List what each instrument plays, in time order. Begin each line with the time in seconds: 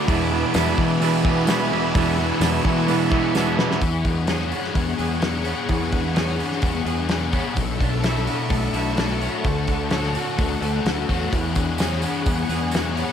Already playing: overdriven electric guitar D4, string machine D6
0.07 distorted electric guitar E2 B2 E3, clean electric guitar E2 E3 G#3 B3 D4 E4, fingered electric bass E2, string machine B4 G#5 E6, kick, open hi-hat
0.30 distorted electric guitar B2 E3, clean electric guitar G#3 B3 D4 E4
0.53 distorted electric guitar E2 B2 E3, fingered electric bass E2, clean electric guitar G#3 B3 D4 E4, snare, open hi-hat, tambourine
0.77 distorted electric guitar B2 E3, fingered electric bass E3, kick
0.99 clean electric guitar E2 E3 G#3 B3 D4 E4, open hi-hat
1.23 overdriven electric guitar E2 B2 E3, clean electric guitar G#3 B3 D4 E4, kick
1.46 distorted electric guitar E2 B2 E3, clean electric guitar G#3 B3 D4 E4, snare, open hi-hat, tambourine
1.70 distorted electric guitar B2 E3, clean electric guitar G#3 B3 D4 E4
1.93 clean electric guitar E2 E3 G#3 B3 D4 E4, distorted electric guitar E2 B2 E3, fingered electric bass E2, string machine C#6, kick, open hi-hat
2.17 distorted electric guitar B2 E3, clean electric guitar G#3 B3 D4 E4
2.40 fingered electric bass E2, distorted electric guitar E2 B2 E3, clean electric guitar G#3 B3 D4 E4, snare, open hi-hat, tambourine
2.63 distorted electric guitar B2 E3, fingered electric bass E3, kick
2.86 clean electric guitar E2 E3 G#3 B3 D4 E4, open hi-hat
3.11 overdriven electric guitar E2 B2 E3, clean electric guitar G#3 B3 D4 E4, kick
3.34 distorted electric guitar E2 B2 E3, clean electric guitar G#3 B3 D4 E4, snare, tambourine
3.57 distorted electric guitar B2 E3, clean electric guitar G#3 B3 D4 E4, snare
3.71 snare
3.81 fingered electric bass E2, distorted electric guitar E3, clean electric guitar E3, string machine G#4 F#5 C#6, kick, open hi-hat
4.05 distorted electric guitar D4, kick, open hi-hat
4.27 clean electric guitar G#4, distorted electric guitar C#5, snare, open hi-hat
4.40 snare
4.51 clean electric guitar B3, distorted electric guitar D4, open hi-hat
4.64 snare
4.74 fingered electric bass E2, distorted electric guitar B3, kick, open hi-hat
4.97 fingered electric bass E2, distorted electric guitar D4, clean electric guitar G#4, open hi-hat
5.21 distorted electric guitar G#4, snare, open hi-hat
5.44 clean electric guitar B3, distorted electric guitar C#5, open hi-hat
5.68 fingered electric bass E2, distorted electric guitar E3, clean electric guitar E3, kick, open hi-hat
5.92 distorted electric guitar D4, kick, open hi-hat
6.15 clean electric guitar G#4, distorted electric guitar C#5, snare, open hi-hat
6.38 clean electric guitar B3, distorted electric guitar D4, open hi-hat
6.52 snare
6.61 fingered electric bass E2, distorted electric guitar B3, kick, open hi-hat
6.85 fingered electric bass E2, distorted electric guitar D4, clean electric guitar G#4, open hi-hat
7.08 distorted electric guitar G#4, snare, open hi-hat
7.31 clean electric guitar B3, distorted electric guitar C#5, kick, open hi-hat
7.54 fingered electric bass B1, distorted electric guitar B2, clean electric guitar B2, string machine A4 E5 C#6, kick, open hi-hat
7.78 distorted electric guitar D4, clean electric guitar D4, kick, open hi-hat
8.02 clean electric guitar E4, distorted electric guitar C#5, snare, open hi-hat
8.17 snare
8.27 clean electric guitar B3, distorted electric guitar D4, open hi-hat
8.49 fingered electric bass B1, distorted electric guitar A3, clean electric guitar D4, kick, open hi-hat
8.73 fingered electric bass B1, distorted electric guitar D4, clean electric guitar E4, open hi-hat
8.97 clean electric guitar D4, distorted electric guitar F#4, snare, open hi-hat
9.21 clean electric guitar B3, distorted electric guitar C#5, open hi-hat
9.42 fingered electric bass D2, clean electric guitar D3, distorted electric guitar D3, string machine A4 F#5, kick, open hi-hat
9.67 distorted electric guitar D4, kick, open hi-hat
9.91 clean electric guitar A4, distorted electric guitar C#5, snare, open hi-hat
10.03 snare
10.15 distorted electric guitar D4, clean electric guitar F#4, open hi-hat
10.37 fingered electric bass D2, distorted electric guitar A3, kick, open hi-hat
10.61 fingered electric bass D2, distorted electric guitar D4, clean electric guitar A4, open hi-hat
10.85 fingered electric bass D2, distorted electric guitar F#4, snare, open hi-hat
11.08 fingered electric bass E2, clean electric guitar F#4, distorted electric guitar C#5, kick, open hi-hat
11.31 fingered electric bass E2, distorted electric guitar E3, clean electric guitar E3, string machine G#4 C#6, kick, open hi-hat
11.55 distorted electric guitar D4, kick, open hi-hat, tambourine
11.78 clean electric guitar G#4, distorted electric guitar C#5, snare, open hi-hat, tambourine
11.93 snare
12.02 clean electric guitar B3, distorted electric guitar D4, open hi-hat, tambourine
12.26 fingered electric bass E2, distorted electric guitar B3, kick, open hi-hat, tambourine
12.49 fingered electric bass E2, distorted electric guitar D4, clean electric guitar G#4, open hi-hat, tambourine
12.71 distorted electric guitar G#4, snare, open hi-hat, tambourine
12.94 clean electric guitar B3, distorted electric guitar C#5, open hi-hat, tambourine